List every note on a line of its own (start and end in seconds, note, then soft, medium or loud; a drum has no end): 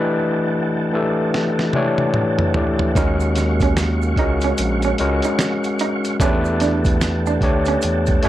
0.00 0.78 E3 loud
0.00 0.79 A3 loud
0.00 0.79 D4 loud
0.00 2.92 E4 medium
0.00 0.79 G4 medium
0.00 2.92 A4 medium
0.00 0.82 B4 loud
0.00 2.98 D#5 medium
0.00 8.29 F#5 medium
0.00 2.92 G5 medium
0.00 2.98 G#5 medium
0.00 2.92 A5 medium
0.93 1.64 E3 medium
0.93 1.65 A3 medium
0.93 1.65 D4 medium
0.93 1.65 G4 medium
0.93 1.65 A4 medium
1.34 snare medium
1.59 snare medium
1.73 2.46 E3 medium
1.73 2.46 A3 medium
1.73 2.46 D4 medium
1.73 2.46 G4 medium
1.73 2.46 C#5 loud
1.73 high tom medium
1.98 high tom medium
2.14 mid tom medium
2.39 mid tom medium
2.54 2.91 E3 medium
2.54 2.91 A3 medium
2.54 2.91 D4 medium
2.54 2.92 G4 medium
2.54 2.92 B4 medium
2.54 floor tom medium
2.79 floor tom medium
2.95 4.14 D#2 loud
2.95 4.03 G#3 loud
2.95 4.03 C#4 loud
2.95 3.14 D#4 medium
2.95 4.03 F#4 loud
2.95 6.17 G#4 medium
2.95 4.04 A#4 loud
2.95 6.17 F5 medium
2.95 6.17 C#6 medium
2.95 kick loud
2.95 closed hi-hat medium
2.95 maracas medium
3.20 maracas medium
3.36 muted clean electric guitar stroke soft
3.36 snare soft
3.36 closed hi-hat medium
3.36 maracas medium
3.60 3.73 C#4 medium
3.60 kick medium
3.60 closed hi-hat medium
3.60 maracas soft
3.77 finger snap medium
3.77 muted clean electric guitar stroke soft
3.77 snare loud
3.77 closed hi-hat medium
3.77 maracas medium
4.02 maracas soft
4.16 4.53 C#2 medium
4.16 4.89 G#3 medium
4.16 4.89 C#4 medium
4.16 4.36 D#4 medium
4.16 4.89 F#4 medium
4.16 4.90 A#4 medium
4.16 kick medium
4.16 closed hi-hat medium
4.41 4.55 C#4 medium
4.41 closed hi-hat soft
4.41 maracas soft
4.58 4.94 A#1 loud
4.58 closed hi-hat loud
4.58 maracas medium
4.82 4.95 C#4 medium
4.82 closed hi-hat soft
4.82 maracas soft
4.98 5.21 C#2 medium
4.98 6.06 G#3 medium
4.98 6.06 C#4 medium
4.98 6.07 F#4 medium
4.98 6.07 A#4 medium
4.98 muted clean electric guitar stroke soft
4.98 closed hi-hat medium
5.22 5.36 D#4 medium
5.22 closed hi-hat soft
5.22 maracas medium
5.39 finger snap medium
5.39 snare loud
5.39 closed hi-hat medium
5.39 maracas medium
5.64 closed hi-hat soft
5.64 maracas soft
5.79 5.98 D#4 medium
5.79 closed hi-hat medium
5.79 maracas soft
6.05 closed hi-hat soft
6.05 maracas soft
6.20 7.38 E2 loud
6.20 7.27 A3 loud
6.20 6.39 C#4 medium
6.20 7.27 D4 loud
6.20 7.28 G4 loud
6.20 8.29 A4 medium
6.20 7.28 B4 loud
6.20 8.29 G5 medium
6.20 8.29 A5 medium
6.20 kick loud
6.20 closed hi-hat medium
6.20 maracas medium
6.45 maracas medium
6.60 6.79 D4 medium
6.60 snare soft
6.60 closed hi-hat medium
6.60 maracas medium
6.85 kick medium
6.85 closed hi-hat medium
6.85 maracas soft
7.01 finger snap medium
7.01 snare loud
7.01 closed hi-hat medium
7.01 maracas medium
7.26 7.38 D4 medium
7.26 maracas soft
7.41 7.77 D2 medium
7.41 8.13 A3 medium
7.41 8.13 D4 medium
7.41 8.14 G4 medium
7.41 8.14 C#5 loud
7.41 muted clean electric guitar stroke soft
7.41 kick medium
7.41 closed hi-hat medium
7.65 7.79 C#4 medium
7.65 closed hi-hat soft
7.65 maracas soft
7.82 8.19 E2 medium
7.82 closed hi-hat medium
7.82 maracas medium
8.06 kick medium
8.06 closed hi-hat soft
8.06 maracas medium
8.23 8.29 F#2 loud
8.23 8.29 A3 medium
8.23 8.29 C#4 medium
8.23 8.29 D4 medium
8.23 8.29 F#4 medium
8.23 8.29 C#5 loud
8.23 closed hi-hat medium